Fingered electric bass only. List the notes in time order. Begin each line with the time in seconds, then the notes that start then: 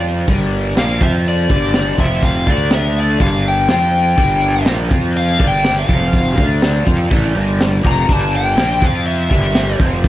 Already playing: F2
0.28 G1
0.77 A#1
1.01 F2
1.50 G1
1.99 F1
2.47 D2
3.20 G1
3.69 F2
4.18 G1
4.66 A#1
4.91 F2
5.40 G1
5.89 F1
6.38 D2
6.87 F2
7.11 A1
7.36 G1
7.85 F1
8.09 G1
8.57 A#1
8.83 F2
9.31 G1
9.80 F1